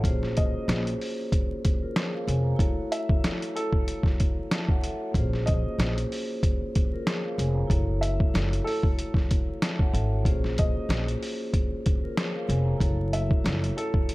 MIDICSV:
0, 0, Header, 1, 5, 480
1, 0, Start_track
1, 0, Tempo, 638298
1, 30, Time_signature, 4, 2, 24, 8
1, 10639, End_track
2, 0, Start_track
2, 0, Title_t, "Upright piano"
2, 0, Program_c, 0, 0
2, 280, Note_on_c, 0, 75, 76
2, 628, Note_off_c, 0, 75, 0
2, 2194, Note_on_c, 0, 76, 80
2, 2643, Note_off_c, 0, 76, 0
2, 2675, Note_on_c, 0, 69, 86
2, 3025, Note_off_c, 0, 69, 0
2, 4105, Note_on_c, 0, 75, 79
2, 4460, Note_off_c, 0, 75, 0
2, 6024, Note_on_c, 0, 76, 77
2, 6478, Note_off_c, 0, 76, 0
2, 6500, Note_on_c, 0, 69, 85
2, 6857, Note_off_c, 0, 69, 0
2, 7962, Note_on_c, 0, 75, 76
2, 8309, Note_off_c, 0, 75, 0
2, 9874, Note_on_c, 0, 76, 79
2, 10323, Note_off_c, 0, 76, 0
2, 10357, Note_on_c, 0, 69, 84
2, 10639, Note_off_c, 0, 69, 0
2, 10639, End_track
3, 0, Start_track
3, 0, Title_t, "Vibraphone"
3, 0, Program_c, 1, 11
3, 0, Control_c, 1, 64, 127
3, 0, Note_on_c, 1, 66, 57
3, 0, Note_on_c, 1, 73, 66
3, 7, Note_on_c, 1, 58, 85
3, 18, Note_on_c, 1, 61, 73
3, 29, Note_on_c, 1, 65, 77
3, 39, Control_c, 1, 64, 0
3, 41, Note_on_c, 1, 68, 71
3, 52, Note_on_c, 1, 72, 90
3, 154, Note_off_c, 1, 73, 0
3, 156, Note_off_c, 1, 66, 0
3, 165, Control_c, 1, 64, 127
3, 1206, Note_off_c, 1, 65, 0
3, 1211, Note_off_c, 1, 68, 0
3, 1217, Note_off_c, 1, 72, 0
3, 1371, Note_on_c, 1, 70, 64
3, 1375, Note_on_c, 1, 65, 56
3, 1468, Note_off_c, 1, 70, 0
3, 1470, Note_off_c, 1, 65, 0
3, 1478, Note_on_c, 1, 73, 72
3, 1483, Note_on_c, 1, 68, 63
3, 1603, Note_off_c, 1, 73, 0
3, 1605, Note_off_c, 1, 68, 0
3, 1608, Note_on_c, 1, 77, 72
3, 1613, Note_on_c, 1, 70, 63
3, 1706, Note_off_c, 1, 77, 0
3, 1709, Note_off_c, 1, 70, 0
3, 1718, Note_on_c, 1, 80, 64
3, 1722, Note_on_c, 1, 73, 61
3, 1829, Note_on_c, 1, 82, 64
3, 1834, Note_on_c, 1, 77, 58
3, 1842, Note_off_c, 1, 80, 0
3, 1845, Note_off_c, 1, 73, 0
3, 1908, Note_off_c, 1, 58, 0
3, 1914, Note_off_c, 1, 61, 0
3, 1918, Note_on_c, 1, 57, 86
3, 1929, Note_on_c, 1, 64, 77
3, 1941, Note_on_c, 1, 66, 71
3, 1952, Note_on_c, 1, 69, 72
3, 1960, Control_c, 1, 64, 0
3, 1963, Note_on_c, 1, 73, 91
3, 2065, Note_off_c, 1, 82, 0
3, 2067, Note_off_c, 1, 77, 0
3, 2086, Control_c, 1, 64, 127
3, 3121, Note_off_c, 1, 66, 0
3, 3127, Note_off_c, 1, 69, 0
3, 3132, Note_off_c, 1, 73, 0
3, 3398, Note_on_c, 1, 81, 65
3, 3403, Note_on_c, 1, 76, 54
3, 3523, Note_off_c, 1, 81, 0
3, 3525, Note_off_c, 1, 76, 0
3, 3533, Note_on_c, 1, 78, 70
3, 3538, Note_on_c, 1, 73, 59
3, 3621, Note_on_c, 1, 76, 74
3, 3626, Note_on_c, 1, 69, 60
3, 3629, Note_off_c, 1, 78, 0
3, 3631, Note_off_c, 1, 73, 0
3, 3754, Note_off_c, 1, 76, 0
3, 3756, Note_off_c, 1, 69, 0
3, 3765, Note_on_c, 1, 73, 65
3, 3770, Note_on_c, 1, 66, 57
3, 3824, Note_off_c, 1, 57, 0
3, 3829, Note_off_c, 1, 64, 0
3, 3846, Note_on_c, 1, 58, 85
3, 3858, Note_on_c, 1, 61, 70
3, 3869, Note_on_c, 1, 65, 73
3, 3879, Control_c, 1, 64, 0
3, 3880, Note_on_c, 1, 68, 70
3, 3892, Note_on_c, 1, 72, 90
3, 3993, Note_off_c, 1, 73, 0
3, 3996, Note_off_c, 1, 66, 0
3, 4011, Control_c, 1, 64, 127
3, 5045, Note_off_c, 1, 65, 0
3, 5051, Note_off_c, 1, 68, 0
3, 5057, Note_off_c, 1, 72, 0
3, 5212, Note_on_c, 1, 70, 66
3, 5217, Note_on_c, 1, 65, 57
3, 5308, Note_off_c, 1, 70, 0
3, 5311, Note_off_c, 1, 65, 0
3, 5320, Note_on_c, 1, 73, 72
3, 5324, Note_on_c, 1, 68, 66
3, 5443, Note_off_c, 1, 73, 0
3, 5446, Note_off_c, 1, 68, 0
3, 5450, Note_on_c, 1, 77, 70
3, 5454, Note_on_c, 1, 70, 62
3, 5547, Note_off_c, 1, 77, 0
3, 5550, Note_off_c, 1, 70, 0
3, 5561, Note_on_c, 1, 80, 66
3, 5565, Note_on_c, 1, 73, 59
3, 5671, Note_on_c, 1, 82, 67
3, 5676, Note_on_c, 1, 77, 59
3, 5684, Note_off_c, 1, 80, 0
3, 5686, Note_off_c, 1, 73, 0
3, 5748, Note_off_c, 1, 58, 0
3, 5754, Note_off_c, 1, 61, 0
3, 5759, Note_on_c, 1, 57, 85
3, 5770, Note_on_c, 1, 64, 76
3, 5781, Note_on_c, 1, 66, 71
3, 5792, Note_on_c, 1, 69, 72
3, 5801, Control_c, 1, 64, 0
3, 5804, Note_on_c, 1, 73, 92
3, 5906, Note_off_c, 1, 82, 0
3, 5908, Note_off_c, 1, 77, 0
3, 5940, Control_c, 1, 64, 127
3, 6961, Note_off_c, 1, 66, 0
3, 6967, Note_off_c, 1, 69, 0
3, 6973, Note_off_c, 1, 73, 0
3, 7240, Note_on_c, 1, 81, 64
3, 7244, Note_on_c, 1, 76, 52
3, 7364, Note_off_c, 1, 81, 0
3, 7366, Note_off_c, 1, 76, 0
3, 7375, Note_on_c, 1, 78, 70
3, 7380, Note_on_c, 1, 73, 60
3, 7463, Note_on_c, 1, 76, 73
3, 7468, Note_on_c, 1, 69, 60
3, 7470, Note_off_c, 1, 78, 0
3, 7472, Note_off_c, 1, 73, 0
3, 7594, Note_off_c, 1, 76, 0
3, 7597, Note_off_c, 1, 69, 0
3, 7607, Note_on_c, 1, 73, 67
3, 7612, Note_on_c, 1, 66, 55
3, 7664, Note_off_c, 1, 57, 0
3, 7670, Note_off_c, 1, 64, 0
3, 7687, Note_on_c, 1, 58, 87
3, 7698, Note_on_c, 1, 61, 73
3, 7710, Note_on_c, 1, 65, 76
3, 7720, Control_c, 1, 64, 0
3, 7721, Note_on_c, 1, 68, 73
3, 7732, Note_on_c, 1, 72, 88
3, 7834, Note_off_c, 1, 73, 0
3, 7836, Note_off_c, 1, 66, 0
3, 7859, Control_c, 1, 64, 127
3, 8886, Note_off_c, 1, 65, 0
3, 8891, Note_off_c, 1, 68, 0
3, 8897, Note_off_c, 1, 72, 0
3, 9052, Note_on_c, 1, 70, 65
3, 9057, Note_on_c, 1, 65, 55
3, 9148, Note_off_c, 1, 70, 0
3, 9151, Note_off_c, 1, 65, 0
3, 9160, Note_on_c, 1, 73, 70
3, 9164, Note_on_c, 1, 68, 63
3, 9283, Note_off_c, 1, 73, 0
3, 9286, Note_off_c, 1, 68, 0
3, 9289, Note_on_c, 1, 77, 74
3, 9293, Note_on_c, 1, 70, 64
3, 9387, Note_off_c, 1, 77, 0
3, 9389, Note_off_c, 1, 70, 0
3, 9399, Note_on_c, 1, 80, 67
3, 9403, Note_on_c, 1, 73, 59
3, 9511, Note_on_c, 1, 82, 67
3, 9516, Note_on_c, 1, 77, 57
3, 9523, Note_off_c, 1, 80, 0
3, 9525, Note_off_c, 1, 73, 0
3, 9588, Note_off_c, 1, 58, 0
3, 9594, Note_off_c, 1, 61, 0
3, 9599, Note_on_c, 1, 57, 87
3, 9610, Note_on_c, 1, 64, 80
3, 9621, Note_on_c, 1, 66, 71
3, 9633, Note_on_c, 1, 69, 70
3, 9641, Control_c, 1, 64, 0
3, 9644, Note_on_c, 1, 73, 90
3, 9746, Note_off_c, 1, 82, 0
3, 9748, Note_off_c, 1, 77, 0
3, 9774, Control_c, 1, 64, 127
3, 10639, Note_off_c, 1, 57, 0
3, 10639, Note_off_c, 1, 64, 0
3, 10639, Note_off_c, 1, 66, 0
3, 10639, Note_off_c, 1, 69, 0
3, 10639, Note_off_c, 1, 73, 0
3, 10639, End_track
4, 0, Start_track
4, 0, Title_t, "Upright bass"
4, 0, Program_c, 2, 32
4, 29, Note_on_c, 2, 34, 104
4, 399, Note_off_c, 2, 34, 0
4, 511, Note_on_c, 2, 34, 99
4, 695, Note_off_c, 2, 34, 0
4, 1711, Note_on_c, 2, 29, 92
4, 1895, Note_off_c, 2, 29, 0
4, 3869, Note_on_c, 2, 34, 102
4, 4238, Note_off_c, 2, 34, 0
4, 4350, Note_on_c, 2, 34, 97
4, 4535, Note_off_c, 2, 34, 0
4, 5551, Note_on_c, 2, 29, 94
4, 5735, Note_off_c, 2, 29, 0
4, 5790, Note_on_c, 2, 30, 97
4, 6160, Note_off_c, 2, 30, 0
4, 6271, Note_on_c, 2, 30, 97
4, 6455, Note_off_c, 2, 30, 0
4, 7470, Note_on_c, 2, 32, 91
4, 7710, Note_off_c, 2, 32, 0
4, 7710, Note_on_c, 2, 34, 101
4, 8079, Note_off_c, 2, 34, 0
4, 8189, Note_on_c, 2, 34, 99
4, 8374, Note_off_c, 2, 34, 0
4, 9390, Note_on_c, 2, 29, 95
4, 9575, Note_off_c, 2, 29, 0
4, 9629, Note_on_c, 2, 30, 100
4, 9999, Note_off_c, 2, 30, 0
4, 10109, Note_on_c, 2, 30, 98
4, 10294, Note_off_c, 2, 30, 0
4, 10639, End_track
5, 0, Start_track
5, 0, Title_t, "Drums"
5, 29, Note_on_c, 9, 36, 113
5, 36, Note_on_c, 9, 42, 84
5, 104, Note_off_c, 9, 36, 0
5, 111, Note_off_c, 9, 42, 0
5, 173, Note_on_c, 9, 38, 36
5, 248, Note_off_c, 9, 38, 0
5, 276, Note_on_c, 9, 42, 80
5, 284, Note_on_c, 9, 36, 98
5, 351, Note_off_c, 9, 42, 0
5, 359, Note_off_c, 9, 36, 0
5, 518, Note_on_c, 9, 42, 89
5, 520, Note_on_c, 9, 38, 109
5, 593, Note_off_c, 9, 42, 0
5, 595, Note_off_c, 9, 38, 0
5, 655, Note_on_c, 9, 42, 55
5, 730, Note_off_c, 9, 42, 0
5, 763, Note_on_c, 9, 46, 54
5, 838, Note_off_c, 9, 46, 0
5, 995, Note_on_c, 9, 36, 101
5, 997, Note_on_c, 9, 42, 91
5, 1070, Note_off_c, 9, 36, 0
5, 1072, Note_off_c, 9, 42, 0
5, 1238, Note_on_c, 9, 42, 72
5, 1241, Note_on_c, 9, 36, 94
5, 1313, Note_off_c, 9, 42, 0
5, 1317, Note_off_c, 9, 36, 0
5, 1475, Note_on_c, 9, 38, 111
5, 1476, Note_on_c, 9, 42, 82
5, 1550, Note_off_c, 9, 38, 0
5, 1551, Note_off_c, 9, 42, 0
5, 1718, Note_on_c, 9, 42, 73
5, 1793, Note_off_c, 9, 42, 0
5, 1949, Note_on_c, 9, 36, 113
5, 1956, Note_on_c, 9, 42, 82
5, 2024, Note_off_c, 9, 36, 0
5, 2031, Note_off_c, 9, 42, 0
5, 2195, Note_on_c, 9, 42, 78
5, 2271, Note_off_c, 9, 42, 0
5, 2327, Note_on_c, 9, 36, 106
5, 2402, Note_off_c, 9, 36, 0
5, 2437, Note_on_c, 9, 42, 89
5, 2439, Note_on_c, 9, 38, 107
5, 2512, Note_off_c, 9, 42, 0
5, 2514, Note_off_c, 9, 38, 0
5, 2575, Note_on_c, 9, 42, 54
5, 2650, Note_off_c, 9, 42, 0
5, 2681, Note_on_c, 9, 42, 74
5, 2757, Note_off_c, 9, 42, 0
5, 2802, Note_on_c, 9, 36, 86
5, 2877, Note_off_c, 9, 36, 0
5, 2917, Note_on_c, 9, 42, 90
5, 2992, Note_off_c, 9, 42, 0
5, 3033, Note_on_c, 9, 36, 90
5, 3052, Note_on_c, 9, 38, 35
5, 3109, Note_off_c, 9, 36, 0
5, 3127, Note_off_c, 9, 38, 0
5, 3157, Note_on_c, 9, 42, 74
5, 3161, Note_on_c, 9, 36, 91
5, 3232, Note_off_c, 9, 42, 0
5, 3236, Note_off_c, 9, 36, 0
5, 3394, Note_on_c, 9, 38, 114
5, 3395, Note_on_c, 9, 42, 85
5, 3469, Note_off_c, 9, 38, 0
5, 3470, Note_off_c, 9, 42, 0
5, 3523, Note_on_c, 9, 36, 91
5, 3598, Note_off_c, 9, 36, 0
5, 3636, Note_on_c, 9, 42, 73
5, 3712, Note_off_c, 9, 42, 0
5, 3868, Note_on_c, 9, 36, 114
5, 3874, Note_on_c, 9, 42, 80
5, 3944, Note_off_c, 9, 36, 0
5, 3949, Note_off_c, 9, 42, 0
5, 4012, Note_on_c, 9, 38, 35
5, 4087, Note_off_c, 9, 38, 0
5, 4115, Note_on_c, 9, 42, 80
5, 4124, Note_on_c, 9, 36, 97
5, 4190, Note_off_c, 9, 42, 0
5, 4199, Note_off_c, 9, 36, 0
5, 4358, Note_on_c, 9, 42, 86
5, 4360, Note_on_c, 9, 38, 110
5, 4433, Note_off_c, 9, 42, 0
5, 4435, Note_off_c, 9, 38, 0
5, 4495, Note_on_c, 9, 42, 54
5, 4571, Note_off_c, 9, 42, 0
5, 4603, Note_on_c, 9, 46, 53
5, 4678, Note_off_c, 9, 46, 0
5, 4835, Note_on_c, 9, 36, 99
5, 4838, Note_on_c, 9, 42, 91
5, 4910, Note_off_c, 9, 36, 0
5, 4913, Note_off_c, 9, 42, 0
5, 5079, Note_on_c, 9, 42, 70
5, 5082, Note_on_c, 9, 36, 89
5, 5154, Note_off_c, 9, 42, 0
5, 5157, Note_off_c, 9, 36, 0
5, 5316, Note_on_c, 9, 38, 109
5, 5317, Note_on_c, 9, 42, 86
5, 5391, Note_off_c, 9, 38, 0
5, 5392, Note_off_c, 9, 42, 0
5, 5559, Note_on_c, 9, 42, 70
5, 5634, Note_off_c, 9, 42, 0
5, 5790, Note_on_c, 9, 36, 111
5, 5796, Note_on_c, 9, 42, 82
5, 5865, Note_off_c, 9, 36, 0
5, 5872, Note_off_c, 9, 42, 0
5, 6036, Note_on_c, 9, 42, 80
5, 6111, Note_off_c, 9, 42, 0
5, 6167, Note_on_c, 9, 36, 105
5, 6243, Note_off_c, 9, 36, 0
5, 6279, Note_on_c, 9, 42, 88
5, 6281, Note_on_c, 9, 38, 110
5, 6354, Note_off_c, 9, 42, 0
5, 6356, Note_off_c, 9, 38, 0
5, 6416, Note_on_c, 9, 42, 53
5, 6491, Note_off_c, 9, 42, 0
5, 6522, Note_on_c, 9, 46, 54
5, 6597, Note_off_c, 9, 46, 0
5, 6643, Note_on_c, 9, 36, 90
5, 6718, Note_off_c, 9, 36, 0
5, 6758, Note_on_c, 9, 42, 91
5, 6833, Note_off_c, 9, 42, 0
5, 6875, Note_on_c, 9, 36, 88
5, 6893, Note_on_c, 9, 38, 37
5, 6950, Note_off_c, 9, 36, 0
5, 6968, Note_off_c, 9, 38, 0
5, 6999, Note_on_c, 9, 42, 74
5, 7002, Note_on_c, 9, 36, 93
5, 7074, Note_off_c, 9, 42, 0
5, 7077, Note_off_c, 9, 36, 0
5, 7235, Note_on_c, 9, 38, 111
5, 7236, Note_on_c, 9, 42, 84
5, 7311, Note_off_c, 9, 38, 0
5, 7311, Note_off_c, 9, 42, 0
5, 7364, Note_on_c, 9, 36, 87
5, 7440, Note_off_c, 9, 36, 0
5, 7479, Note_on_c, 9, 42, 72
5, 7554, Note_off_c, 9, 42, 0
5, 7710, Note_on_c, 9, 36, 113
5, 7717, Note_on_c, 9, 42, 85
5, 7785, Note_off_c, 9, 36, 0
5, 7792, Note_off_c, 9, 42, 0
5, 7853, Note_on_c, 9, 38, 35
5, 7928, Note_off_c, 9, 38, 0
5, 7956, Note_on_c, 9, 42, 79
5, 7964, Note_on_c, 9, 36, 97
5, 8031, Note_off_c, 9, 42, 0
5, 8039, Note_off_c, 9, 36, 0
5, 8198, Note_on_c, 9, 42, 89
5, 8200, Note_on_c, 9, 38, 110
5, 8273, Note_off_c, 9, 42, 0
5, 8275, Note_off_c, 9, 38, 0
5, 8335, Note_on_c, 9, 42, 55
5, 8411, Note_off_c, 9, 42, 0
5, 8441, Note_on_c, 9, 46, 53
5, 8517, Note_off_c, 9, 46, 0
5, 8675, Note_on_c, 9, 36, 99
5, 8676, Note_on_c, 9, 42, 92
5, 8750, Note_off_c, 9, 36, 0
5, 8751, Note_off_c, 9, 42, 0
5, 8917, Note_on_c, 9, 42, 70
5, 8921, Note_on_c, 9, 36, 96
5, 8992, Note_off_c, 9, 42, 0
5, 8996, Note_off_c, 9, 36, 0
5, 9155, Note_on_c, 9, 38, 112
5, 9156, Note_on_c, 9, 42, 88
5, 9230, Note_off_c, 9, 38, 0
5, 9231, Note_off_c, 9, 42, 0
5, 9397, Note_on_c, 9, 42, 74
5, 9473, Note_off_c, 9, 42, 0
5, 9629, Note_on_c, 9, 36, 112
5, 9635, Note_on_c, 9, 42, 82
5, 9704, Note_off_c, 9, 36, 0
5, 9710, Note_off_c, 9, 42, 0
5, 9876, Note_on_c, 9, 42, 78
5, 9951, Note_off_c, 9, 42, 0
5, 10007, Note_on_c, 9, 36, 106
5, 10082, Note_off_c, 9, 36, 0
5, 10118, Note_on_c, 9, 42, 88
5, 10120, Note_on_c, 9, 38, 110
5, 10194, Note_off_c, 9, 42, 0
5, 10195, Note_off_c, 9, 38, 0
5, 10256, Note_on_c, 9, 42, 53
5, 10331, Note_off_c, 9, 42, 0
5, 10362, Note_on_c, 9, 42, 73
5, 10437, Note_off_c, 9, 42, 0
5, 10482, Note_on_c, 9, 36, 87
5, 10557, Note_off_c, 9, 36, 0
5, 10596, Note_on_c, 9, 42, 93
5, 10639, Note_off_c, 9, 42, 0
5, 10639, End_track
0, 0, End_of_file